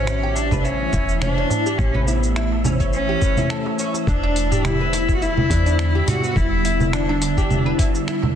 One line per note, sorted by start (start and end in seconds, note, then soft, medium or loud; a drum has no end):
0.00 0.88 A1 medium
0.00 4.03 E3 medium
0.00 4.03 A3 medium
0.00 0.36 C#4 loud
0.00 8.35 E4 medium
0.00 8.35 E5 medium
0.07 finger snap medium
0.07 shaker soft
0.23 0.50 G4 medium
0.23 darbuka ka medium
0.35 0.58 D4 loud
0.35 darbuka tek medium
0.35 shaker medium
0.51 0.64 B4 medium
0.51 kick medium
0.51 low conga medium
0.51 shaker soft
0.58 0.65 D4 medium
0.64 1.20 C#4 loud
0.64 0.74 E4 medium
0.64 shaker soft
0.93 1.45 E1 medium
0.93 1.21 E4 loud
0.93 kick loud
0.93 shaker medium
1.09 shaker soft
1.21 1.36 C#4 medium
1.21 1.79 D4 loud
1.21 finger snap loud
1.21 low conga medium
1.21 shaker soft
1.38 1.50 C#4 medium
1.50 darbuka ka medium
1.50 darbuka dum medium
1.50 shaker medium
1.66 1.93 G4 medium
1.66 darbuka tek soft
1.66 shaker soft
1.77 3.16 A1 loud
1.77 2.08 C#4 loud
1.77 kick loud
1.77 shaker soft
1.94 2.07 B4 medium
1.94 low conga medium
2.06 2.64 B3 medium
2.06 2.17 E4 medium
2.06 shaker medium
2.23 shaker soft
2.36 2.64 E4 medium
2.36 finger snap medium
2.36 shaker soft
2.52 darbuka ka medium
2.65 2.79 C#4 medium
2.65 darbuka tek medium
2.65 low conga medium
2.65 shaker medium
2.80 2.93 C#4 medium
2.80 kick medium
2.80 shaker soft
2.93 3.75 C#4 loud
2.93 shaker soft
3.09 3.21 G4 medium
3.21 3.37 B4 medium
3.21 kick loud
3.21 darbuka ka soft
3.21 darbuka tek soft
3.21 shaker medium
3.37 3.49 E4 medium
3.37 darbuka ka soft
3.37 low conga medium
3.37 shaker soft
3.50 3.65 A4 medium
3.50 finger snap medium
3.50 shaker soft
3.66 darbuka tek medium
3.79 3.93 C#4 medium
3.79 shaker medium
3.94 darbuka ka soft
3.94 darbuka tek soft
3.94 shaker soft
4.07 5.45 E1 loud
4.07 8.35 D3 medium
4.07 8.35 G3 medium
4.07 8.35 B3 medium
4.07 4.22 D4 medium
4.07 4.66 D4 medium
4.07 kick loud
4.07 shaker soft
4.23 4.36 D4 loud
4.36 closed hi-hat medium
4.36 shaker medium
4.51 4.79 G4 medium
4.51 darbuka tek soft
4.51 darbuka dum medium
4.51 shaker soft
4.65 5.14 E4 loud
4.65 finger snap loud
4.65 low conga medium
4.65 shaker soft
4.80 4.93 B4 medium
4.80 darbuka ka medium
4.93 5.02 E4 medium
4.93 closed hi-hat medium
4.93 darbuka tek medium
4.93 shaker medium
5.09 kick medium
5.09 shaker soft
5.15 5.24 F#4 medium
5.22 5.49 E4 medium
5.22 6.09 E4 loud
5.22 shaker soft
5.37 low conga medium
5.50 6.02 E2 medium
5.50 5.65 D4 medium
5.50 kick loud
5.50 closed hi-hat medium
5.50 shaker medium
5.66 5.79 D4 medium
5.66 shaker soft
5.79 finger snap loud
5.79 shaker soft
5.95 6.22 G4 medium
6.07 6.37 F#4 loud
6.07 closed hi-hat medium
6.07 darbuka ka medium
6.07 darbuka dum medium
6.07 low conga medium
6.07 shaker medium
6.22 6.36 B4 medium
6.22 darbuka tek soft
6.22 shaker soft
6.36 7.73 E1 medium
6.36 6.95 E4 loud
6.36 6.45 E4 medium
6.36 kick loud
6.36 shaker soft
6.65 6.92 E4 medium
6.65 closed hi-hat medium
6.65 shaker medium
6.80 low conga medium
6.80 shaker soft
6.93 8.08 D4 medium
6.93 7.07 D4 medium
6.93 finger snap loud
6.93 shaker soft
7.09 7.21 D4 medium
7.09 darbuka ka medium
7.22 closed hi-hat medium
7.22 darbuka tek medium
7.22 shaker medium
7.37 7.65 G4 medium
7.37 kick medium
7.37 shaker soft
7.51 low conga medium
7.51 shaker soft
7.66 7.78 B4 medium
7.78 7.88 E4 medium
7.78 kick loud
7.78 closed hi-hat medium
7.78 darbuka ka soft
7.78 shaker medium
7.94 darbuka ka soft
7.94 shaker soft
8.08 8.35 E4 medium
8.08 finger snap medium
8.08 shaker soft
8.22 darbuka tek medium
8.22 low conga medium